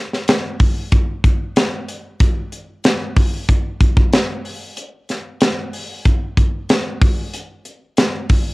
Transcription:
0.13 snare soft
0.28 snare loud
0.28 closed hi-hat loud
0.60 kick medium
0.60 open hi-hat medium
0.92 kick medium
0.92 closed hi-hat medium
1.24 kick medium
1.24 closed hi-hat medium
1.56 snare loud
1.56 closed hi-hat medium
1.89 closed hi-hat medium
2.20 kick loud
2.20 closed hi-hat medium
2.52 closed hi-hat medium
2.84 snare loud
2.84 closed hi-hat loud
3.16 kick loud
3.16 open hi-hat medium
3.49 kick medium
3.49 closed hi-hat medium
3.80 kick medium
3.80 closed hi-hat medium
3.97 kick loud
4.13 snare loud
4.13 closed hi-hat medium
4.45 open hi-hat medium
4.77 closed hi-hat medium
5.09 snare soft
5.09 closed hi-hat medium
5.41 snare loud
5.41 closed hi-hat loud
5.73 open hi-hat medium
6.05 kick medium
6.05 closed hi-hat medium
6.37 kick medium
6.37 closed hi-hat medium
6.69 snare loud
6.69 closed hi-hat medium
7.02 kick loud
7.02 open hi-hat medium
7.34 closed hi-hat medium
7.65 closed hi-hat medium
7.97 snare loud
7.97 closed hi-hat loud
8.29 kick medium
8.29 open hi-hat medium

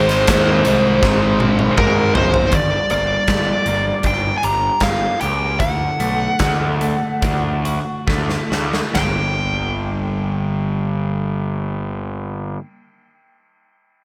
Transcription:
0.00 0.24 G#1 loud
0.00 0.28 G#2 loud
0.00 0.28 D#3 loud
0.00 0.28 G#3 loud
0.00 2.51 G#3 medium
0.00 2.50 C4 medium
0.00 2.50 D#4 medium
0.00 1.73 C5 medium
0.00 2.50 C5 medium
0.09 snare soft
0.09 closed hi-hat medium
0.28 0.61 D#2 loud
0.28 0.64 G#2 medium
0.28 0.65 D#3 medium
0.28 0.65 G#3 loud
0.28 kick loud
0.28 snare loud
0.28 closed hi-hat loud
0.65 0.99 C2 medium
0.65 1.02 G#2 medium
0.65 1.03 D#3 loud
0.65 1.03 G#3 medium
0.65 closed hi-hat medium
1.03 1.69 G#1 loud
1.03 1.77 G#2 medium
1.03 1.78 D#3 loud
1.03 1.78 G#3 loud
1.03 kick loud
1.03 snare medium
1.40 high tom medium
1.59 high tom medium
1.77 2.11 G#2 loud
1.77 2.14 G#2 medium
1.77 2.15 D#3 medium
1.77 2.15 G#3 medium
1.77 2.15 A#4 medium
1.77 kick loud
1.77 mid tom medium
2.15 2.48 F#1 loud
2.15 2.51 G#2 medium
2.15 2.51 D#3 medium
2.15 2.52 G#3 loud
2.15 2.54 C5 medium
2.15 floor tom loud
2.34 floor tom loud
2.52 2.77 G1 medium
2.52 4.43 G2 medium
2.52 2.89 D5 medium
2.52 kick loud
2.52 closed hi-hat medium
2.90 3.16 G1 medium
2.90 3.66 A#3 medium
2.90 4.09 D5 medium
2.90 closed hi-hat medium
3.28 3.53 G1 medium
3.28 5.21 G3 medium
3.28 kick loud
3.28 snare loud
3.28 closed hi-hat medium
3.66 3.91 G1 medium
3.66 4.80 A#3 medium
3.66 closed hi-hat medium
4.03 4.29 G1 medium
4.03 7.23 D4 medium
4.03 4.37 G5 loud
4.03 kick medium
4.03 closed hi-hat medium
4.38 4.44 G#5 medium
4.43 4.69 G1 medium
4.43 5.20 G4 medium
4.43 4.84 A#5 medium
4.43 closed hi-hat medium
4.80 5.07 G1 medium
4.80 5.60 A#3 medium
4.80 5.21 F5 medium
4.80 kick loud
4.80 snare loud
4.80 closed hi-hat medium
5.21 5.60 C#2 medium
5.21 5.61 G4 medium
5.21 5.60 G5 medium
5.21 closed hi-hat medium
5.60 5.86 D2 medium
5.60 6.39 D3 medium
5.60 8.04 F#5 medium
5.60 kick medium
5.60 closed hi-hat medium
6.00 6.26 B1 medium
6.00 6.80 A3 medium
6.00 closed hi-hat medium
6.39 6.94 D2 medium
6.39 8.51 D3 medium
6.39 kick loud
6.39 snare loud
6.39 closed hi-hat medium
6.81 8.06 A3 medium
6.81 closed hi-hat medium
7.22 7.78 D2 medium
7.22 8.95 D4 medium
7.22 kick medium
7.22 snare soft
7.22 closed hi-hat medium
7.65 8.49 F#4 medium
7.65 closed hi-hat medium
8.07 8.36 D2 medium
8.07 8.95 A3 medium
8.07 kick medium
8.07 snare soft
8.30 snare soft
8.50 8.80 D2 medium
8.50 8.95 F#4 medium
8.50 snare medium
8.73 snare medium
8.93 12.55 G1 medium
8.93 12.57 G2 medium
8.93 12.58 D3 medium
8.93 12.59 G3 medium
8.93 12.60 A#3 medium
8.93 12.61 D4 medium
8.93 12.54 G5 medium
8.93 snare medium
8.93 floor tom medium
8.93 ride bell medium
8.98 12.61 G4 medium

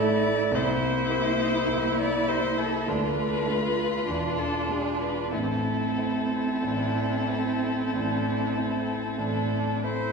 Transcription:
0.00 0.56 A1 soft
0.00 0.56 A2 medium
0.00 0.50 A3 medium
0.00 0.56 A3 soft
0.00 0.51 E4 medium
0.00 0.56 E4 soft
0.00 0.55 A4 soft
0.00 0.57 D5 medium
0.52 1.08 C2 medium
0.52 1.08 C3 soft
0.52 2.84 A#3 medium
0.52 2.83 E4 medium
0.52 2.90 E4 medium
0.52 1.98 C5 medium
1.09 1.64 A#3 soft
1.09 1.64 E4 soft
1.09 1.64 G4 soft
1.68 2.25 C2 soft
1.68 2.26 C3 soft
1.99 2.30 D5 medium
2.28 2.83 A#3 soft
2.28 2.84 E4 soft
2.28 2.84 G4 soft
2.28 2.59 C5 medium
2.58 2.90 A4 medium
2.86 3.46 D2 soft
2.86 3.46 D3 soft
2.86 4.05 A3 soft
2.86 3.49 D4 soft
2.86 5.28 F4 soft
2.86 4.40 B4 medium
3.47 4.04 A3 soft
3.47 4.04 D4 soft
3.47 4.07 F4 soft
3.47 4.04 F4 soft
4.07 4.67 E1 soft
4.07 4.67 E2 soft
4.07 5.28 D4 soft
4.07 5.36 D4 soft
4.39 4.72 A4 medium
4.69 5.28 G#3 soft
4.69 5.28 D4 soft
4.69 5.29 F4 soft
4.69 5.02 G#4 soft
5.01 5.33 B4 medium
5.32 5.96 A1 soft
5.32 5.96 A2 soft
5.32 10.12 C4 soft
5.32 6.52 C4 soft
5.32 10.12 E4 soft
5.32 9.80 A4 medium
5.98 6.59 A3 soft
5.98 6.60 C4 soft
5.98 6.60 E4 soft
6.64 7.27 A1 soft
6.64 7.27 A2 soft
6.64 7.32 D4 soft
7.29 7.88 A3 soft
7.29 7.89 C4 soft
7.29 7.96 C4 soft
7.29 7.89 E4 soft
7.93 8.53 A1 soft
7.93 8.54 A2 soft
7.93 8.57 D4 soft
8.55 9.15 A3 soft
8.55 9.20 C4 soft
8.55 9.15 C4 soft
8.55 9.15 E4 soft
9.18 9.82 A1 soft
9.18 9.82 A2 soft
9.18 9.85 D4 soft
9.83 10.12 A3 soft
9.83 10.12 C4 soft
9.83 10.12 E4 soft
9.83 10.12 C5 medium

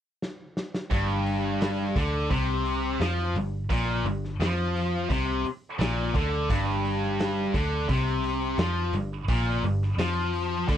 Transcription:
0.22 snare medium
0.57 snare medium
0.74 snare medium
0.91 1.92 G1 medium
0.91 1.95 G2 loud
0.91 kick loud
0.91 open hi-hat medium
1.26 open hi-hat soft
1.61 snare loud
1.61 open hi-hat medium
1.96 2.28 D2 medium
1.96 2.30 D3 loud
1.96 kick loud
1.96 open hi-hat medium
2.31 2.96 C2 medium
2.31 2.99 C3 loud
2.31 kick loud
2.31 open hi-hat medium
2.66 open hi-hat medium
3.00 3.33 F2 loud
3.00 3.35 F3 loud
3.00 snare loud
3.00 open hi-hat medium
3.34 3.67 G1 medium
3.34 3.63 G2 medium
3.34 open hi-hat medium
3.70 4.03 A#1 medium
3.70 4.04 A#2 loud
3.70 kick loud
3.70 open hi-hat medium
4.05 4.37 G1 medium
4.05 4.33 G2 medium
4.05 open hi-hat soft
4.24 snare soft
4.40 5.06 F2 medium
4.40 5.09 F3 loud
4.40 snare loud
4.40 open hi-hat medium
4.76 open hi-hat medium
5.10 5.42 C2 medium
5.10 5.44 C3 loud
5.10 kick loud
5.10 open hi-hat medium
5.44 muted picked electric bass stroke soft
5.44 muted distorted electric guitar stroke medium
5.44 open hi-hat soft
5.79 6.12 A#1 loud
5.79 6.14 A#2 loud
5.79 snare loud
5.79 open hi-hat medium
6.14 6.47 D2 medium
6.14 6.49 D3 loud
6.14 kick medium
6.14 open hi-hat soft
6.49 7.50 G1 medium
6.49 7.53 G2 loud
6.49 kick loud
6.49 open hi-hat medium
6.85 open hi-hat medium
7.03 snare soft
7.19 snare loud
7.19 open hi-hat medium
7.54 7.87 D2 medium
7.54 7.88 D3 loud
7.54 kick loud
7.54 open hi-hat medium
7.89 8.55 C2 medium
7.89 8.58 C3 loud
7.89 kick loud
7.89 open hi-hat medium
8.24 open hi-hat medium
8.58 8.91 F2 loud
8.58 8.93 F3 loud
8.58 snare loud
8.58 open hi-hat medium
8.93 9.26 G1 medium
8.93 9.22 G2 medium
8.93 open hi-hat medium
9.28 9.61 A#1 medium
9.28 9.63 A#2 loud
9.28 kick loud
9.28 open hi-hat medium
9.63 9.96 G1 medium
9.63 9.92 G2 medium
9.63 open hi-hat medium
9.82 snare soft
9.97 10.64 F2 medium
9.97 10.67 F3 medium
9.97 snare loud
9.97 open hi-hat medium
10.34 open hi-hat medium
10.68 10.77 D2 medium
10.68 10.77 D3 medium
10.68 kick loud
10.68 open hi-hat medium

